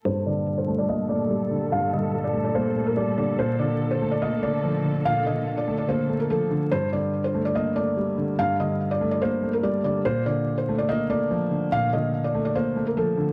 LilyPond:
<<
  \new Staff \with { instrumentName = "Felt piano" } { \time 4/4 \key g \minor \tempo 4 = 144 c''8 d''8. c''8 d''16 ees''8 d''4. | f''8 ees''8. d''8 d''16 c''8. bes'16 d''8 d''8 | c''8 d''8. c''8 d''16 ees''8 d''4. | f''8 ees''8. d''8 d''16 c''8. bes'16 a'4 |
c''8 d''8. c''8 d''16 ees''8 d''4. | f''8 ees''8. d''8 d''16 c''8. bes'16 d''8 d''8 | c''8 d''8. c''8 d''16 ees''8 d''4. | f''8 ees''8. d''8 d''16 c''8. bes'16 a'4 | }
  \new Staff \with { instrumentName = "Grand piano" } { \clef bass \time 4/4 \key g \minor g,8 d4 a8 bes8 a8 g8 d8 | g,8 d4 a8 bes8 a8 g8 d8 | bes,8 d4 a8 bes8 a8 f8 d8 | bes,8 d4 a8 bes8 a8 f8 d8 |
g,8 d4 a8 bes8 a8 g8 d8 | g,8 d4 a8 bes8 a8 g8 d8 | bes,8 d4 a8 bes8 a8 f8 d8 | bes,8 d4 a8 bes8 a8 f8 d8 | }
  \new Staff \with { instrumentName = "String section" } { \clef bass \time 4/4 \key g \minor << { <bes, a'>1~ | <bes, a'>1~ | <bes, a'>1~ | <bes, a'>1 |
r1 | r1 | r1 | r1 | } \\ { g1~ | g1 | d1~ | d1 |
r1 | r1 | r1 | r1 | } >> }
>>